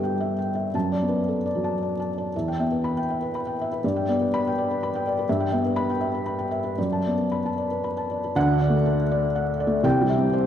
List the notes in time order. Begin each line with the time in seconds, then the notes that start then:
Already playing: G2 G3 B3 A4 B4 E5 G5
0.04 G5
0.21 E5
0.38 G5
0.55 E5
0.74 F#2 A5
0.92 D5
1.02 B3
1.08 B4
1.28 A4
1.46 D5
1.55 F#3
1.64 A5
1.83 D5
2.00 A5
2.18 D5
2.36 E2 E5
2.48 G5
2.60 B3 E5
2.72 B4
2.84 B5
2.97 G5
3.10 E5
3.22 B4
3.35 B5
3.47 G5
3.62 E5
3.72 B4
3.84 G2 D5
3.96 G5
4.09 B3 D5
4.21 B4
4.34 B5
4.47 G5
4.58 D5
4.71 B4
4.83 B5
4.95 G5
5.07 D5
5.19 B4
5.29 G2 E5
5.40 G5
5.52 B3 E5
5.65 B4
5.76 B5
5.90 G5
6.01 E5
6.14 B4
6.26 B5
6.38 G5
6.51 E5
6.64 B4
6.78 F#2 D5
6.92 A5
7.07 B3 D5
7.18 B4
7.32 B5
7.46 A5
7.58 D5
7.71 B4
7.84 B5
7.97 A5
8.11 D5
8.24 B4
8.36 D2 D3 F#5
8.53 D4
8.62 D5
8.70 A3
8.86 A4
9.11 D5
9.35 F#5
9.60 D5
9.67 A3
9.83 C2 C3 G5
10.01 G3
10.09 E5
10.17 C4
10.33 C5